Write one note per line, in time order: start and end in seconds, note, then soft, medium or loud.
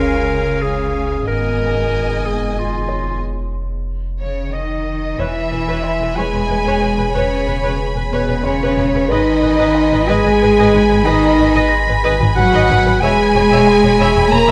0.00 1.24 F1 medium
0.00 1.24 C#2 medium
0.00 1.24 C#3 medium
0.00 1.24 C#4 medium
0.00 1.28 C#4 medium
0.00 1.28 G#4 medium
0.00 0.63 A#4 loud
0.00 1.88 C#5 medium
0.00 1.23 F5 medium
0.00 1.24 F5 medium
0.00 1.24 G#5 medium
0.62 1.27 G#4 medium
1.27 5.15 F1 medium
1.27 3.19 G#1 medium
1.27 3.19 G#2 medium
1.27 3.19 B3 medium
1.27 3.24 B3 medium
1.27 3.20 G#4 medium
1.27 2.27 A#4 medium
1.27 3.20 D#5 medium
1.27 3.24 D#5 medium
1.27 3.20 G#5 medium
2.26 2.60 G#4 medium
2.58 3.24 F4 medium
2.89 3.20 C#5 soft
4.20 4.51 C#3 soft
4.20 4.51 C#4 soft
4.20 4.51 C#5 soft
4.20 4.54 C#5 soft
4.53 5.19 D#3 soft
4.53 5.19 D#4 medium
4.53 5.18 D#5 soft
4.53 5.21 D#5 soft
5.18 5.25 E1 medium
5.18 9.10 E1 medium
5.18 6.17 E3 medium
5.18 6.16 E4 medium
5.18 9.06 G#4 medium
5.18 9.06 B4 medium
5.18 5.34 B4 soft
5.18 9.06 C#5 medium
5.18 5.34 C#5 soft
5.18 6.17 E5 medium
5.18 9.06 G#5 medium
5.18 9.06 B5 medium
5.52 5.58 E1 soft
5.52 5.58 B4 soft
5.68 5.74 E1 medium
5.68 5.83 B4 medium
5.68 5.83 C#5 medium
5.83 7.76 E5 soft
6.01 6.07 E1 soft
6.01 6.08 B4 soft
6.16 6.23 E1 medium
6.16 7.15 G#3 medium
6.16 7.14 G#4 medium
6.16 6.32 B4 soft
6.16 6.33 C#5 medium
6.16 7.14 G#5 medium
6.32 6.39 E1 soft
6.32 6.40 B4 soft
6.32 6.40 C#5 soft
6.49 6.55 E1 soft
6.49 6.56 B4 soft
6.65 6.72 E1 medium
6.65 6.80 B4 medium
6.65 6.81 C#5 medium
6.82 6.89 E1 soft
6.82 6.88 B4 soft
6.82 6.88 C#5 soft
6.98 7.05 E1 soft
6.98 7.05 B4 medium
7.14 7.21 E1 medium
7.14 7.78 C#3 soft
7.14 7.79 C#4 medium
7.14 7.30 B4 medium
7.14 7.78 C#5 medium
7.14 7.30 C#5 medium
7.14 7.79 C#5 medium
7.47 7.54 E1 soft
7.47 7.54 B4 soft
7.63 7.70 E1 medium
7.63 7.79 B4 medium
7.63 7.79 C#5 medium
7.96 8.03 E1 soft
7.96 8.03 B4 soft
8.11 8.19 E1 medium
8.11 8.42 B2 medium
8.11 8.43 B3 medium
8.11 8.27 B4 medium
8.11 8.43 B4 medium
8.11 8.27 C#5 medium
8.29 8.35 E1 soft
8.29 8.35 B4 soft
8.29 8.35 C#5 soft
8.44 8.52 E1 medium
8.44 9.10 C#3 medium
8.44 9.11 C#4 medium
8.44 8.52 B4 medium
8.44 10.36 C#5 soft
8.44 9.12 C#5 medium
8.44 9.11 C#5 medium
8.61 8.68 E1 medium
8.61 8.77 B4 medium
8.61 8.77 C#5 medium
8.78 8.84 E1 medium
8.78 8.84 B4 medium
8.78 8.85 C#5 medium
8.94 9.00 E1 soft
8.94 9.01 B4 medium
9.08 13.02 G#1 medium
9.08 9.17 G#1 medium
9.08 10.08 D#3 medium
9.08 10.09 D#4 loud
9.08 12.98 G#4 medium
9.08 11.01 B4 soft
9.08 9.26 B4 medium
9.08 12.98 B4 medium
9.08 9.26 D#5 medium
9.08 10.10 D#5 medium
9.08 10.09 D#5 medium
9.08 13.02 D#5 medium
9.08 12.98 G#5 medium
9.08 12.98 B5 medium
9.42 9.50 G#1 medium
9.42 9.49 B4 medium
9.58 9.66 G#1 medium
9.58 9.74 B4 medium
9.58 9.74 D#5 medium
9.75 11.67 F5 medium
9.91 9.99 G#1 medium
9.91 9.98 B4 medium
10.07 10.15 G#1 medium
10.07 11.06 G#3 medium
10.07 11.06 G#4 loud
10.07 10.23 B4 medium
10.07 10.23 D#5 medium
10.07 11.06 G#5 medium
10.07 11.07 G#5 medium
10.25 10.32 G#1 medium
10.25 10.31 B4 medium
10.25 10.31 D#5 medium
10.41 10.48 G#1 medium
10.41 10.48 B4 medium
10.58 10.65 G#1 medium
10.58 10.73 B4 medium
10.58 10.73 D#5 medium
10.74 10.81 G#1 medium
10.74 10.80 B4 medium
10.74 10.81 D#5 medium
10.89 10.97 G#1 medium
10.89 10.96 B4 medium
11.05 11.14 G#1 medium
11.05 11.71 D#3 medium
11.05 11.72 D#4 loud
11.05 11.21 B4 medium
11.05 11.21 D#5 medium
11.05 11.71 D#5 medium
11.05 11.72 D#5 medium
11.39 11.46 G#1 medium
11.39 11.45 B4 medium
11.55 11.62 G#1 medium
11.55 11.70 B4 medium
11.55 11.70 D#5 medium
11.69 13.62 A#6 medium
11.87 11.95 G#1 medium
11.87 11.94 B4 medium
12.03 12.11 G#1 loud
12.03 12.19 B4 medium
12.03 12.19 D#5 medium
12.20 12.27 G#1 medium
12.20 12.26 B4 medium
12.20 12.27 D#5 soft
12.36 12.43 G#1 medium
12.36 12.97 F#3 loud
12.36 12.97 F#4 loud
12.36 12.43 B4 medium
12.36 13.02 F#5 loud
12.36 12.98 F#5 medium
12.53 12.60 G#1 loud
12.53 12.68 B4 medium
12.53 12.68 D#5 medium
12.70 12.76 G#1 medium
12.70 12.76 B4 medium
12.70 12.76 D#5 medium
12.85 12.93 G#1 medium
12.85 12.92 B4 medium
13.00 14.51 E1 medium
13.00 13.08 E1 medium
13.00 14.32 G#3 medium
13.00 14.32 G#4 loud
13.00 14.51 G#4 medium
13.00 13.17 C#5 medium
13.00 14.51 C#5 medium
13.00 13.17 E5 medium
13.00 14.34 G#5 medium
13.00 14.51 G#5 medium
13.00 14.32 G#5 medium
13.00 14.51 G#5 medium
13.00 14.51 B5 loud
13.35 13.41 E1 medium
13.35 13.41 C#5 medium
13.51 13.57 E1 medium
13.51 13.66 C#5 medium
13.51 13.66 E5 medium
13.67 14.51 F5 medium
13.83 13.90 E1 medium
13.83 13.90 C#5 medium
13.98 14.06 E1 medium
13.98 14.14 C#5 loud
13.98 14.13 E5 medium
14.15 14.22 E1 medium
14.15 14.22 C#5 medium
14.15 14.21 E5 medium
14.31 14.38 E1 medium
14.31 14.51 A#3 loud
14.31 14.51 A#4 loud
14.31 14.38 C#5 medium
14.31 14.51 A#5 medium
14.48 14.51 E1 medium
14.48 14.51 C#5 medium
14.48 14.51 E5 medium